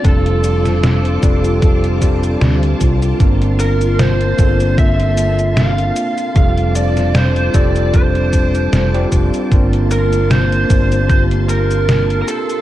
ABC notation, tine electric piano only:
X:1
M:4/4
L:1/16
Q:"Swing 16ths" 1/4=76
K:Gm
V:1 name="Tine electric piano"
[G,CDFA]6 [G,CDFA] z3 [G,CDFG]6 | [B,CDFB]6 [B,CDFA]8- [B,CDFA]2 | [G,CDFA]6 [G,CDFA] z6 [G,CDFG]3 | [B,CDFB]6 [B,CDFG]8- [B,CDFG]2 |]